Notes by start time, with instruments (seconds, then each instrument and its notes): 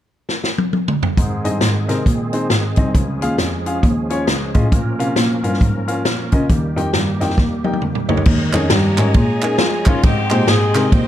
0.29 snare
0.44 snare
0.58 high tom
0.73 high tom
0.88 mid tom
1.03 floor tom
1.17 cello G#2, grand piano G#2, tonewheel organ D#3 G#3 C4 G#4, kick, closed hi-hat
1.45 cello G2, grand piano C4 D#4 G#4 D#5, closed hi-hat
1.61 cello G#2, snare, closed hi-hat
1.88 cello C3, grand piano C4 D#4 G#4 A#4, snare, closed hi-hat
2.06 cello A#2, kick, closed hi-hat
2.33 grand piano C4 D#4 G#4 C5, closed hi-hat
2.50 cello G#2, snare, closed hi-hat
2.76 cello C2, grand piano C4 D#4 G#4 D#5, kick, closed hi-hat
2.94 cello C#2, grand piano C#3, tonewheel organ F3 C#4, kick, closed hi-hat
3.21 cello D#2, grand piano C#4 F4 G#4 F5, closed hi-hat
3.38 cello F2, snare, closed hi-hat
3.66 grand piano C#4 F4 G#4 F5, closed hi-hat
3.83 cello D#2, kick, closed hi-hat
4.10 grand piano C#4 F4 G#4 C#5, closed hi-hat
4.27 cello C#2, snare, closed hi-hat
4.54 cello A2, grand piano C#4 F4 G#4 D#5, kick, closed hi-hat
4.72 cello A#2, grand piano A#2, tonewheel organ A#3 A#4, kick, closed hi-hat
4.99 cello C3, grand piano C#4 F4 A#4 F5, closed hi-hat
5.16 cello A#2, snare, closed hi-hat
5.43 cello G2, grand piano C#4 F4 A#4 F5, closed hi-hat
5.54 snare
5.61 cello G#2, kick, closed hi-hat
5.87 grand piano C#4 F4 A#4 F5, closed hi-hat
6.05 cello A#2, snare, closed hi-hat
6.32 cello C#3, grand piano C#4 F4 A#4 D#5, kick, closed hi-hat
6.49 cello D#2, grand piano D#3, tonewheel organ D#3 G3 G4, kick, closed hi-hat
6.76 cello F2, grand piano D#4 G4 A#4 G5, closed hi-hat
6.93 cello G2, snare, closed hi-hat
7.20 cello F2, grand piano D#4 G4 A#4 G5, snare, closed hi-hat
7.30 snare
7.38 cello D#2, kick, snare
7.64 grand piano D#4 G4 A#4 G5, high tom
7.73 high tom
7.82 cello F2, mid tom
7.95 mid tom
8.09 cello D2, grand piano D#4 G4 A#4 C#5, floor tom
8.17 floor tom
8.26 cello D#2, grand piano D#3, tonewheel organ G#3 C#5 D#5 A#5, kick, crash
8.53 cello F2, grand piano A#3 C#4 D#4 G#4 C#5, clap, ride
8.70 cello G2, saxophone section A#3 C#4 G4, snare, ride
8.98 cello G#2, grand piano A#3 C#4 D#4 G#4 C#5, clap, ride
9.14 cello A#2, saxophone section C#4 G#4, kick, ride
9.41 grand piano A#3 C#4 D#4 G#4 A#4, clap, ride
9.58 cello F3, snare, ride
9.85 grand piano A#3 C#4 D#4 G#4 C#5, saxophone section F4, kick, clap, ride
10.03 grand piano G#2, cello G#2, saxophone section C4 D#4 G4, tonewheel organ D#5 G5 C6, kick, ride
10.30 cello A#2, grand piano G#3 C4 D#4 G4 C5, clap, ride
10.47 cello G#2, saxophone section C4 D#4 G#4, snare, ride
10.75 cello C3, grand piano G#3 C4 D#4 G4 A#4, snare, clap, ride
10.92 cello A#2, saxophone section D#4 G4 C5, kick, ride